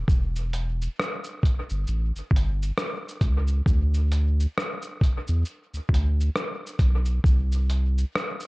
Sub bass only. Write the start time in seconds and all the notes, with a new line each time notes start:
0.08 E1
1.71 G1
1.88 A1
2.16 G1
2.32 G1
3.22 C#2
3.67 D2
5.29 E2
5.74 D2
5.90 D2
6.80 B1
7.25 C2